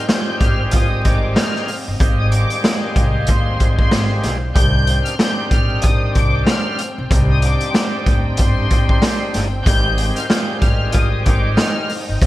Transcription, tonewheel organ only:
0.07 D#3 G3 G#3 C4 G4
2.00 D#3 G3 G#3 C4 G4
4.55 D#3 G3 C4 D4 G4
5.19 D#3 G3 C4 D4 G4
7.10 G3 C4 D4 D#4 G4
9.65 D#3 G3 G#3 C4 G4
10.29 D#3 G3 G#3 C4 G4

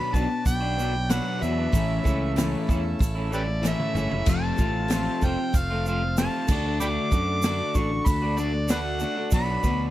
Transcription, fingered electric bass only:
0.14 B1
0.46 B1
1.42 E2
1.73 A1
2.05 C#2
2.69 E2
3.00 A1
3.95 G1
4.11 F#1
4.27 F1
4.59 A1
5.23 F1
5.54 F1
6.49 D2
7.12 F#2
7.75 A1
8.06 D2
9.32 B1
9.63 D2

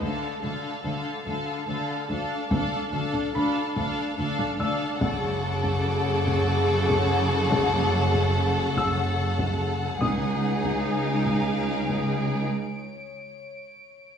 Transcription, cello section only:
0.01 D2
0.43 D2
0.84 D2
1.26 D2
1.68 D2
2.09 D2
2.51 D2
2.93 D2
3.34 D2
3.76 D2
4.18 D2
4.59 D2
5.01 F#2
10.01 C#2

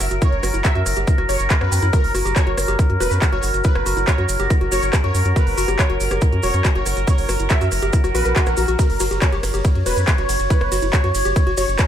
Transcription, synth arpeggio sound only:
0.00 F#5
0.11 F#4
0.22 E4
0.43 F#4
0.54 E4
0.65 F#4
0.75 F#4
0.97 G4
1.07 E4
1.18 F#4
1.29 G4
1.50 F#4
1.61 F#5
1.72 G5
1.83 E4
1.93 F#4
2.15 F#4
2.25 G4
2.36 F#4
2.47 F#4
2.68 G4
2.79 E4
2.90 F#4
3.00 F#4
3.22 F#4
3.33 F#4
3.43 F#5
3.54 F#4
3.65 E4
3.86 F#4
3.97 E4
4.08 F#4
4.18 F#4
4.40 G4
4.50 E4
4.61 F#4
4.72 F#4
4.93 G4
5.04 F#4
5.15 A#4
5.25 F#4
5.36 F#4
5.58 F#4
5.68 G4
5.79 F#4
5.90 F#4
6.11 G4
6.22 E4
6.33 F#4
6.43 F#4
6.65 F#4
6.75 F#4
6.86 F#5
6.97 F#4
7.08 E4
7.29 F#4
7.40 E4
7.50 F#4
7.61 F#4
7.83 G4
7.93 E4
8.04 F#4
8.15 F#4
8.25 A#4
8.36 F#4
8.47 A#4
8.57 F#4
8.68 F#4
8.79 F#4
9.00 F#4
9.11 G4
9.22 F#4
9.32 G4
9.54 G4
9.65 E4
9.75 F#4
9.86 F#4
10.08 F#4
10.18 F#4
10.29 F#5
10.40 F#4
10.50 E4
10.72 F#4
10.82 E4
10.93 F#4
11.04 F#4
11.25 G4
11.36 E4
11.47 F#4
11.58 F#4
11.79 G4

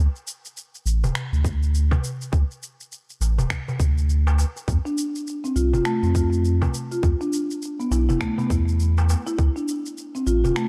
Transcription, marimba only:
4.85 D4
5.44 C4
5.56 F4
5.74 F4
5.85 A3
6.03 C4
6.15 F4
6.92 F4
7.21 D4
7.80 B3
7.92 E4
8.09 E4
8.21 A3
8.38 B3
8.50 E4
9.27 E4
9.56 D4
10.15 C4
10.27 F4
10.44 F4
10.56 A3

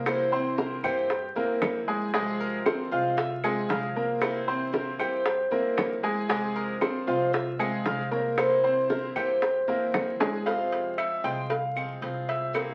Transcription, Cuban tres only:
0.07 C5
0.58 A#4
0.84 C5
2.15 G#4
2.40 A#4
2.91 C5
3.17 E5
3.69 F5
4.21 C5
4.73 A#4
4.99 C5
6.30 G#4
6.56 A#4
7.08 C5
7.33 E5
7.86 F5
8.11 C#5
8.38 C5
8.90 A#4
9.16 C5

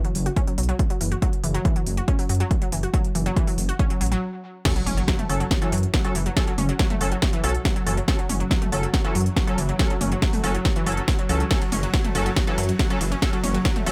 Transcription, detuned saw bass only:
0.15 F#1
0.58 B1
1.01 F#1
1.44 F#1
1.87 F#1
2.29 F#2
2.72 F#1
3.15 F#1
3.58 F#1
4.01 A1
4.87 F#1
5.29 F#1
5.72 F#2
6.15 F#1
6.58 F#1
7.01 F#1
7.44 B1
7.86 F#1
8.29 F#1
8.72 F#1
9.15 F#2
9.58 F#1
10.01 F#1
10.44 F#1
10.87 F#1
11.29 C#2
11.72 F#1
12.15 F#1
12.58 F#2
13.01 F#1
13.44 F#1
13.87 F#1

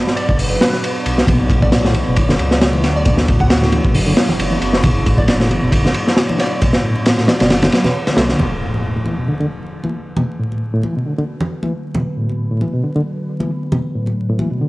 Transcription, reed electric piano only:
1.28 B2
1.50 A2
1.85 A2
1.95 E3
2.07 B2
2.17 D3
2.29 D3
2.73 E3
3.06 B2
3.28 A2
3.63 A2
3.73 E3
3.85 B2
3.95 D3
4.07 D3
4.51 E3
4.83 B2
5.06 A2
5.40 A2
5.50 E3
5.62 B2
5.73 D3
5.85 D3
6.29 E3
6.61 B2
6.84 A2
7.18 A2
7.28 E3
7.40 B2
7.50 D3
7.63 D3
7.73 F#3
7.85 B2
8.07 D3
8.17 A3
8.29 D3
8.39 B2
8.62 A2
8.96 A2
9.06 E3
9.18 B2
9.28 D3
9.40 D3
9.84 E3
10.17 B2
10.39 A2
10.74 A2
10.84 E3
10.96 B2
11.06 D3
11.18 D3
11.63 E3
11.95 B2
12.17 A2
12.51 A2
12.61 E3
12.74 B2
12.84 D3
12.96 D3
13.40 E3
13.73 B2
13.95 A2
14.29 A2
14.39 E3
14.51 B2
14.61 D3

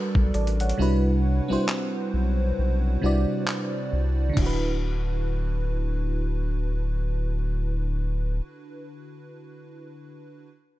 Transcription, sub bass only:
0.15 B1
0.35 A1
0.79 C2
1.50 B1
2.14 B1
2.59 B1
3.04 C2
3.93 C2
4.37 D1

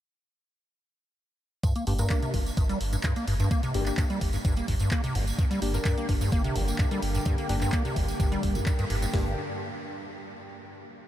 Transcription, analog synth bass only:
1.87 G1
2.34 G1
2.57 G1
2.81 G1
3.28 G1
3.74 G1
4.21 G1
4.45 G1
4.68 G1
5.15 G1
5.62 G1
6.09 G1
6.32 G1
6.56 G1
7.03 G1
7.49 G1
7.96 G1
8.20 G1
8.43 G1
8.90 G1
9.14 G1

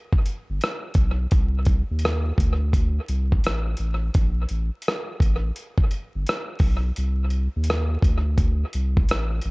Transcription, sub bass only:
0.50 G1
0.95 B1
1.32 C2
1.91 D#2
2.38 D2
3.09 C2
3.45 A1
3.79 A1
4.15 A#1
4.50 A1
5.21 A1
6.15 G1
6.60 B1
6.98 C2
7.56 D#2
8.03 D2
8.75 C2
9.10 A1
9.45 A1

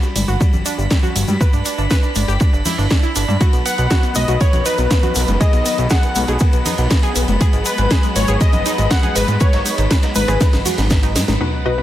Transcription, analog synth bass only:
0.16 G1
0.28 G1
0.53 G1
0.78 G1
1.16 G1
1.28 G2
1.53 G1
1.78 G1
2.16 G1
2.28 G1
2.53 G1
2.78 G1
3.16 G1
3.28 G2
3.53 B1
3.78 B1
4.16 B1
4.28 B1
4.53 B1
4.78 B1
5.16 B1
5.28 F#1
5.53 B1
5.78 B1
6.16 B1
6.28 B1
6.53 B1
6.78 B1
7.16 B1
7.28 F#1
7.53 G#1
7.78 G#1
8.16 G#1
8.28 G#1
8.53 G#1
8.78 G#1
9.16 G#1
9.28 G#2
9.53 G#1
9.78 G#1
10.16 G#1
10.28 G#1
10.53 G#1
10.78 G#1
11.16 G#2
11.28 G#1

